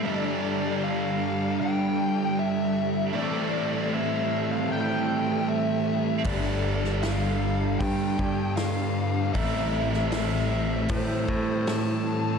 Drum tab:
HH |----------------|----------------|o---o---o---o---|o---o---o---o---|
SD |----------------|----------------|---oo-------o---|---oo-------o---|
BD |----------------|----------------|o-------o-o-----|o-------o-o-----|